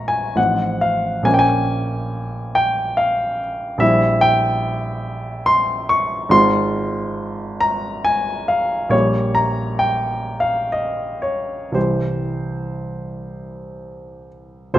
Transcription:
0.00 0.32 A#1 soft
0.00 0.32 G#3 soft
0.00 0.33 C#4 soft
0.00 0.33 F4 soft
0.00 0.39 F5 medium
0.00 0.40 A#5 medium
0.00 0.40 C#6 medium
0.08 0.37 G#5 medium
0.36 1.22 A1 soft
0.36 1.22 F3 soft
0.36 1.23 C4 soft
0.36 1.23 D#4 soft
0.36 0.81 F#5 medium
0.81 1.25 F5 medium
1.23 3.75 A#1 soft
1.23 3.76 F3 soft
1.23 3.76 A#3 soft
1.23 3.76 C#4 soft
1.23 1.32 G#5 medium
1.34 1.40 G5 medium
1.39 2.55 G#5 medium
2.55 2.97 G5 medium
2.97 3.39 F5 medium
3.78 6.26 A#1 medium
3.78 6.26 G3 soft
3.78 6.27 C4 soft
3.78 6.27 E4 soft
3.78 4.22 E5 medium
4.21 5.47 G5 medium
5.46 5.89 C6 medium
5.89 6.31 C#6 medium
6.29 8.87 G#1 medium
6.29 8.88 G#3 soft
6.29 8.88 C4 soft
6.29 8.88 F4 soft
6.29 7.62 C6 loud
7.60 8.06 A#5 medium
8.05 8.49 G#5 medium
8.48 8.92 F5 medium
8.89 11.69 A#1 medium
8.89 11.70 G3 soft
8.89 11.70 A#3 soft
8.89 11.70 G4 soft
8.89 9.35 C#5 medium
9.35 9.80 A#5 medium
9.79 10.41 G5 medium
10.40 10.73 F5 medium
10.72 11.22 D#5 medium
11.22 11.74 C#5 medium
11.72 14.70 C2 soft
11.72 14.70 E3 soft
11.72 14.70 G3 soft
11.72 14.71 G4 soft
11.72 14.28 C5 medium
14.74 14.79 F1 medium
14.74 14.79 F2 medium
14.74 14.79 F4 medium
14.74 14.79 G#4 medium
14.74 14.79 C5 medium

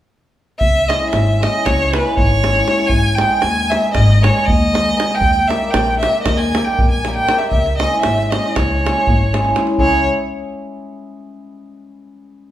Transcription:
0.59 0.92 C#2 medium
0.59 0.89 E5 loud
0.59 davul low medium
0.88 1.38 G#3 medium
0.88 1.03 C#4 medium
0.88 1.04 E4 medium
0.88 1.04 G#4 medium
0.88 1.10 D#5 medium
0.88 davul high medium
1.10 1.44 G#1 medium
1.10 1.44 E5 medium
1.10 davul high medium
1.39 1.92 G#3 medium
1.39 1.55 C#4 soft
1.39 1.56 E4 medium
1.39 1.56 G#4 medium
1.39 1.67 D#5 medium
1.39 davul high medium
1.65 1.97 C#2 medium
1.65 1.95 C#5 medium
1.65 davul high medium
1.65 davul low medium
1.80 davul high soft
1.93 2.41 G#3 medium
1.93 2.09 C#4 soft
1.93 2.09 E4 soft
1.93 2.09 G#4 medium
1.93 2.17 B4 medium
1.93 davul high medium
2.05 davul high soft
2.17 2.61 G#1 medium
2.17 2.88 C#5 medium
2.17 davul low medium
2.43 2.65 G#3 medium
2.43 2.58 C#4 soft
2.43 2.58 E4 soft
2.43 2.58 G#4 medium
2.43 davul high medium
2.66 2.95 G#3 soft
2.66 2.81 C#4 soft
2.66 2.81 E4 soft
2.66 2.81 G#4 soft
2.66 davul high soft
2.79 davul high soft
2.87 3.22 G#1 medium
2.87 3.17 G#5 medium
2.87 davul low medium
3.15 3.69 G#3 medium
3.15 3.33 B3 medium
3.15 3.33 D#4 medium
3.15 3.34 G#4 medium
3.15 3.43 G5 medium
3.15 davul high medium
3.42 3.75 D#2 medium
3.42 3.72 G#5 loud
3.42 davul high medium
3.70 4.20 G#3 medium
3.70 3.86 B3 medium
3.70 3.86 D#4 medium
3.70 3.86 G#4 medium
3.70 3.93 E5 medium
3.70 davul high medium
3.94 4.28 G#1 medium
3.94 4.24 D#5 medium
3.94 davul high medium
3.94 davul low medium
4.10 davul high soft
4.21 4.72 G#3 soft
4.21 4.38 B3 medium
4.21 4.38 D#4 soft
4.21 4.38 G#4 medium
4.21 4.47 C#5 medium
4.21 davul high medium
4.37 davul high soft
4.45 4.92 D#2 medium
4.45 5.16 D#5 loud
4.45 davul low medium
4.73 4.94 G#3 medium
4.73 4.88 B3 soft
4.73 4.88 D#4 soft
4.73 4.89 G#4 medium
4.73 davul high medium
4.96 5.26 G#3 medium
4.96 5.11 B3 soft
4.96 5.11 D#4 medium
4.96 5.12 G#4 medium
5.00 davul high medium
5.11 davul high soft
5.15 5.49 G5 medium
5.20 5.52 D#2 medium
5.20 davul low medium
5.48 6.00 G3 medium
5.48 5.64 A#3 medium
5.48 5.64 D#4 medium
5.48 5.64 G4 medium
5.48 5.72 E5 medium
5.48 davul high medium
5.70 6.05 A#1 medium
5.70 5.99 G5 medium
5.70 davul high medium
5.99 6.53 G3 soft
5.99 6.17 A#3 medium
5.99 6.17 D#4 soft
5.99 6.17 G4 medium
5.99 6.22 E5 medium
5.99 davul high medium
6.23 6.39 D#5 medium
6.23 davul high medium
6.23 davul low medium
6.27 6.58 D#2 medium
6.37 6.66 G#5 medium
6.37 davul high soft
6.54 7.04 G3 medium
6.54 6.70 A#3 soft
6.54 6.70 D#4 soft
6.54 6.70 G4 medium
6.54 davul high medium
6.64 6.90 G5 medium
6.79 7.23 A#1 medium
6.79 davul low medium
6.91 7.14 G#5 medium
7.05 7.28 G3 medium
7.05 7.20 A#3 soft
7.05 7.20 D#4 soft
7.05 7.20 G4 medium
7.05 davul high soft
7.16 7.40 G5 medium
7.29 7.56 G3 medium
7.29 7.43 A#3 soft
7.29 7.44 D#4 soft
7.29 7.44 G4 medium
7.29 davul high medium
7.38 7.49 E5 medium
7.38 davul high soft
7.50 7.83 C#2 medium
7.50 7.77 E5 medium
7.50 davul low medium
7.66 davul high soft
7.78 8.31 G#3 medium
7.78 7.95 C#4 medium
7.78 7.95 E4 soft
7.78 8.01 D#5 medium
7.78 davul high medium
7.83 7.96 G#4 medium
8.01 8.23 E5 medium
8.01 davul high medium
8.05 8.36 G#1 medium
8.18 davul high soft
8.23 8.32 E5 medium
8.30 8.82 G#3 medium
8.30 8.47 C#4 medium
8.30 8.47 E4 soft
8.30 8.57 D#5 medium
8.30 davul high medium
8.34 8.48 G#4 medium
8.46 davul high soft
8.55 8.88 C#2 medium
8.55 9.57 C#5 medium
8.55 davul high medium
8.55 davul low medium
8.83 9.32 G#3 medium
8.83 8.99 C#4 soft
8.83 8.99 E4 soft
8.83 8.99 G#4 medium
8.83 davul high medium
9.07 9.51 G#1 medium
9.07 davul low medium
9.33 9.54 G#3 medium
9.33 9.47 C#4 medium
9.33 9.48 E4 soft
9.33 9.48 G#4 medium
9.33 davul high medium
9.45 davul high soft
9.55 9.78 G#3 medium
9.55 9.70 C#4 medium
9.55 9.70 E4 medium
9.55 9.71 G#4 medium
9.55 davul high medium
9.67 davul high soft
9.78 10.06 C#2 medium
9.78 10.06 G#3 medium
9.78 10.06 C#4 medium
9.78 10.06 E4 medium
9.78 10.06 G#4 medium
9.78 10.07 C#5 medium
9.78 davul low medium

